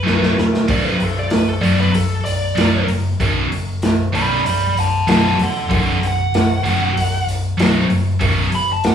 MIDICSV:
0, 0, Header, 1, 5, 480
1, 0, Start_track
1, 0, Key_signature, 2, "minor"
1, 0, Tempo, 626959
1, 527, Time_signature, 4, 2, 24, 8
1, 6851, End_track
2, 0, Start_track
2, 0, Title_t, "Lead electric guitar"
2, 0, Program_c, 0, 29
2, 0, Note_on_c, 0, 71, 88
2, 286, Note_off_c, 0, 71, 0
2, 540, Note_on_c, 0, 74, 107
2, 652, Note_off_c, 0, 74, 0
2, 652, Note_on_c, 0, 71, 84
2, 766, Note_off_c, 0, 71, 0
2, 796, Note_on_c, 0, 69, 82
2, 899, Note_off_c, 0, 69, 0
2, 909, Note_on_c, 0, 74, 89
2, 1016, Note_off_c, 0, 74, 0
2, 1023, Note_on_c, 0, 71, 85
2, 1135, Note_off_c, 0, 71, 0
2, 1135, Note_on_c, 0, 69, 92
2, 1235, Note_on_c, 0, 74, 95
2, 1248, Note_off_c, 0, 69, 0
2, 1358, Note_off_c, 0, 74, 0
2, 1381, Note_on_c, 0, 71, 95
2, 1491, Note_off_c, 0, 71, 0
2, 1498, Note_on_c, 0, 69, 87
2, 1720, Note_off_c, 0, 69, 0
2, 1723, Note_on_c, 0, 74, 95
2, 2192, Note_off_c, 0, 74, 0
2, 3173, Note_on_c, 0, 74, 78
2, 3180, Note_on_c, 0, 83, 97
2, 3408, Note_off_c, 0, 83, 0
2, 3412, Note_off_c, 0, 74, 0
2, 3418, Note_on_c, 0, 83, 89
2, 3425, Note_on_c, 0, 74, 75
2, 3641, Note_off_c, 0, 74, 0
2, 3647, Note_off_c, 0, 83, 0
2, 3665, Note_on_c, 0, 78, 75
2, 3675, Note_on_c, 0, 81, 76
2, 3881, Note_off_c, 0, 78, 0
2, 3896, Note_off_c, 0, 81, 0
2, 3901, Note_on_c, 0, 78, 87
2, 3917, Note_on_c, 0, 81, 89
2, 4119, Note_off_c, 0, 78, 0
2, 4137, Note_off_c, 0, 81, 0
2, 4151, Note_on_c, 0, 69, 80
2, 4158, Note_on_c, 0, 78, 86
2, 4365, Note_off_c, 0, 69, 0
2, 4375, Note_off_c, 0, 78, 0
2, 4405, Note_on_c, 0, 69, 74
2, 4410, Note_on_c, 0, 78, 74
2, 4613, Note_off_c, 0, 69, 0
2, 4622, Note_off_c, 0, 78, 0
2, 4651, Note_on_c, 0, 78, 105
2, 5561, Note_off_c, 0, 78, 0
2, 6547, Note_on_c, 0, 83, 99
2, 6654, Note_off_c, 0, 83, 0
2, 6681, Note_on_c, 0, 81, 78
2, 6781, Note_off_c, 0, 81, 0
2, 6790, Note_on_c, 0, 78, 89
2, 6851, Note_off_c, 0, 78, 0
2, 6851, End_track
3, 0, Start_track
3, 0, Title_t, "Distorted electric guitar"
3, 0, Program_c, 1, 30
3, 26, Note_on_c, 1, 35, 95
3, 33, Note_on_c, 1, 42, 101
3, 38, Note_on_c, 1, 47, 94
3, 228, Note_off_c, 1, 35, 0
3, 232, Note_off_c, 1, 42, 0
3, 234, Note_off_c, 1, 47, 0
3, 519, Note_on_c, 1, 35, 82
3, 525, Note_on_c, 1, 42, 84
3, 532, Note_on_c, 1, 47, 84
3, 716, Note_off_c, 1, 35, 0
3, 718, Note_off_c, 1, 42, 0
3, 722, Note_off_c, 1, 47, 0
3, 1234, Note_on_c, 1, 35, 91
3, 1247, Note_on_c, 1, 42, 92
3, 1248, Note_on_c, 1, 47, 98
3, 1434, Note_off_c, 1, 35, 0
3, 1440, Note_off_c, 1, 42, 0
3, 1441, Note_off_c, 1, 47, 0
3, 1954, Note_on_c, 1, 35, 87
3, 1961, Note_on_c, 1, 42, 95
3, 1968, Note_on_c, 1, 47, 113
3, 2154, Note_off_c, 1, 35, 0
3, 2158, Note_off_c, 1, 42, 0
3, 2161, Note_off_c, 1, 47, 0
3, 2450, Note_on_c, 1, 35, 94
3, 2455, Note_on_c, 1, 47, 80
3, 2456, Note_on_c, 1, 42, 79
3, 2642, Note_off_c, 1, 35, 0
3, 2645, Note_off_c, 1, 42, 0
3, 2645, Note_off_c, 1, 47, 0
3, 3158, Note_on_c, 1, 35, 92
3, 3167, Note_on_c, 1, 42, 100
3, 3171, Note_on_c, 1, 47, 101
3, 3356, Note_off_c, 1, 35, 0
3, 3361, Note_off_c, 1, 42, 0
3, 3362, Note_off_c, 1, 47, 0
3, 3883, Note_on_c, 1, 35, 86
3, 3888, Note_on_c, 1, 42, 107
3, 3899, Note_on_c, 1, 47, 105
3, 4078, Note_off_c, 1, 35, 0
3, 4081, Note_off_c, 1, 42, 0
3, 4086, Note_off_c, 1, 47, 0
3, 4359, Note_on_c, 1, 35, 83
3, 4368, Note_on_c, 1, 42, 81
3, 4374, Note_on_c, 1, 47, 104
3, 4556, Note_off_c, 1, 35, 0
3, 4561, Note_off_c, 1, 42, 0
3, 4564, Note_off_c, 1, 47, 0
3, 5083, Note_on_c, 1, 35, 101
3, 5092, Note_on_c, 1, 42, 94
3, 5096, Note_on_c, 1, 47, 98
3, 5278, Note_off_c, 1, 35, 0
3, 5282, Note_off_c, 1, 42, 0
3, 5284, Note_off_c, 1, 47, 0
3, 5800, Note_on_c, 1, 35, 99
3, 5804, Note_on_c, 1, 42, 95
3, 5809, Note_on_c, 1, 47, 105
3, 5996, Note_off_c, 1, 35, 0
3, 5998, Note_off_c, 1, 42, 0
3, 6000, Note_off_c, 1, 47, 0
3, 6273, Note_on_c, 1, 35, 82
3, 6279, Note_on_c, 1, 42, 94
3, 6285, Note_on_c, 1, 47, 103
3, 6472, Note_off_c, 1, 35, 0
3, 6475, Note_off_c, 1, 42, 0
3, 6478, Note_off_c, 1, 47, 0
3, 6851, End_track
4, 0, Start_track
4, 0, Title_t, "Picked electric bass"
4, 0, Program_c, 2, 34
4, 54, Note_on_c, 2, 23, 92
4, 236, Note_off_c, 2, 23, 0
4, 302, Note_on_c, 2, 28, 78
4, 481, Note_off_c, 2, 28, 0
4, 525, Note_on_c, 2, 23, 95
4, 711, Note_off_c, 2, 23, 0
4, 781, Note_on_c, 2, 23, 83
4, 961, Note_off_c, 2, 23, 0
4, 1014, Note_on_c, 2, 23, 80
4, 1197, Note_off_c, 2, 23, 0
4, 1250, Note_on_c, 2, 30, 83
4, 1435, Note_off_c, 2, 30, 0
4, 1488, Note_on_c, 2, 23, 90
4, 1673, Note_off_c, 2, 23, 0
4, 1732, Note_on_c, 2, 23, 81
4, 1916, Note_off_c, 2, 23, 0
4, 1970, Note_on_c, 2, 23, 86
4, 2154, Note_off_c, 2, 23, 0
4, 2211, Note_on_c, 2, 30, 84
4, 2395, Note_off_c, 2, 30, 0
4, 2457, Note_on_c, 2, 23, 93
4, 2639, Note_off_c, 2, 23, 0
4, 2701, Note_on_c, 2, 30, 82
4, 2882, Note_off_c, 2, 30, 0
4, 2932, Note_on_c, 2, 23, 83
4, 3116, Note_off_c, 2, 23, 0
4, 3171, Note_on_c, 2, 35, 91
4, 3356, Note_off_c, 2, 35, 0
4, 3405, Note_on_c, 2, 23, 93
4, 3592, Note_off_c, 2, 23, 0
4, 3643, Note_on_c, 2, 23, 83
4, 3830, Note_off_c, 2, 23, 0
4, 3882, Note_on_c, 2, 23, 95
4, 4069, Note_off_c, 2, 23, 0
4, 4124, Note_on_c, 2, 28, 85
4, 4311, Note_off_c, 2, 28, 0
4, 4373, Note_on_c, 2, 23, 94
4, 4556, Note_off_c, 2, 23, 0
4, 4603, Note_on_c, 2, 23, 89
4, 4790, Note_off_c, 2, 23, 0
4, 4841, Note_on_c, 2, 23, 90
4, 5029, Note_off_c, 2, 23, 0
4, 5078, Note_on_c, 2, 30, 89
4, 5267, Note_off_c, 2, 30, 0
4, 5324, Note_on_c, 2, 23, 96
4, 5510, Note_off_c, 2, 23, 0
4, 5564, Note_on_c, 2, 23, 91
4, 5750, Note_off_c, 2, 23, 0
4, 5811, Note_on_c, 2, 23, 95
4, 5994, Note_off_c, 2, 23, 0
4, 6056, Note_on_c, 2, 30, 93
4, 6237, Note_off_c, 2, 30, 0
4, 6293, Note_on_c, 2, 23, 96
4, 6475, Note_off_c, 2, 23, 0
4, 6533, Note_on_c, 2, 30, 86
4, 6715, Note_off_c, 2, 30, 0
4, 6774, Note_on_c, 2, 23, 99
4, 6851, Note_off_c, 2, 23, 0
4, 6851, End_track
5, 0, Start_track
5, 0, Title_t, "Drums"
5, 48, Note_on_c, 9, 38, 56
5, 124, Note_off_c, 9, 38, 0
5, 174, Note_on_c, 9, 38, 68
5, 251, Note_off_c, 9, 38, 0
5, 292, Note_on_c, 9, 38, 86
5, 368, Note_off_c, 9, 38, 0
5, 413, Note_on_c, 9, 38, 84
5, 489, Note_off_c, 9, 38, 0
5, 522, Note_on_c, 9, 46, 79
5, 522, Note_on_c, 9, 49, 83
5, 526, Note_on_c, 9, 36, 102
5, 599, Note_off_c, 9, 46, 0
5, 599, Note_off_c, 9, 49, 0
5, 602, Note_off_c, 9, 36, 0
5, 766, Note_on_c, 9, 46, 58
5, 842, Note_off_c, 9, 46, 0
5, 997, Note_on_c, 9, 46, 71
5, 1005, Note_on_c, 9, 38, 104
5, 1074, Note_off_c, 9, 46, 0
5, 1081, Note_off_c, 9, 38, 0
5, 1250, Note_on_c, 9, 46, 54
5, 1327, Note_off_c, 9, 46, 0
5, 1488, Note_on_c, 9, 46, 69
5, 1564, Note_off_c, 9, 46, 0
5, 1728, Note_on_c, 9, 46, 57
5, 1804, Note_off_c, 9, 46, 0
5, 1970, Note_on_c, 9, 46, 71
5, 1978, Note_on_c, 9, 38, 108
5, 2047, Note_off_c, 9, 46, 0
5, 2054, Note_off_c, 9, 38, 0
5, 2207, Note_on_c, 9, 46, 55
5, 2283, Note_off_c, 9, 46, 0
5, 2451, Note_on_c, 9, 36, 109
5, 2453, Note_on_c, 9, 46, 68
5, 2528, Note_off_c, 9, 36, 0
5, 2529, Note_off_c, 9, 46, 0
5, 2694, Note_on_c, 9, 46, 47
5, 2771, Note_off_c, 9, 46, 0
5, 2926, Note_on_c, 9, 46, 65
5, 2934, Note_on_c, 9, 38, 98
5, 3002, Note_off_c, 9, 46, 0
5, 3010, Note_off_c, 9, 38, 0
5, 3175, Note_on_c, 9, 46, 51
5, 3252, Note_off_c, 9, 46, 0
5, 3413, Note_on_c, 9, 46, 67
5, 3490, Note_off_c, 9, 46, 0
5, 3653, Note_on_c, 9, 46, 55
5, 3729, Note_off_c, 9, 46, 0
5, 3888, Note_on_c, 9, 46, 75
5, 3896, Note_on_c, 9, 38, 109
5, 3965, Note_off_c, 9, 46, 0
5, 3973, Note_off_c, 9, 38, 0
5, 4129, Note_on_c, 9, 46, 55
5, 4205, Note_off_c, 9, 46, 0
5, 4370, Note_on_c, 9, 46, 73
5, 4371, Note_on_c, 9, 36, 110
5, 4447, Note_off_c, 9, 36, 0
5, 4447, Note_off_c, 9, 46, 0
5, 4617, Note_on_c, 9, 46, 57
5, 4694, Note_off_c, 9, 46, 0
5, 4854, Note_on_c, 9, 46, 73
5, 4862, Note_on_c, 9, 38, 103
5, 4931, Note_off_c, 9, 46, 0
5, 4938, Note_off_c, 9, 38, 0
5, 5094, Note_on_c, 9, 46, 57
5, 5170, Note_off_c, 9, 46, 0
5, 5338, Note_on_c, 9, 46, 70
5, 5414, Note_off_c, 9, 46, 0
5, 5576, Note_on_c, 9, 46, 62
5, 5653, Note_off_c, 9, 46, 0
5, 5813, Note_on_c, 9, 46, 78
5, 5821, Note_on_c, 9, 38, 115
5, 5890, Note_off_c, 9, 46, 0
5, 5897, Note_off_c, 9, 38, 0
5, 6048, Note_on_c, 9, 46, 54
5, 6124, Note_off_c, 9, 46, 0
5, 6284, Note_on_c, 9, 46, 74
5, 6287, Note_on_c, 9, 36, 111
5, 6360, Note_off_c, 9, 46, 0
5, 6364, Note_off_c, 9, 36, 0
5, 6522, Note_on_c, 9, 46, 54
5, 6599, Note_off_c, 9, 46, 0
5, 6765, Note_on_c, 9, 46, 72
5, 6773, Note_on_c, 9, 38, 106
5, 6842, Note_off_c, 9, 46, 0
5, 6850, Note_off_c, 9, 38, 0
5, 6851, End_track
0, 0, End_of_file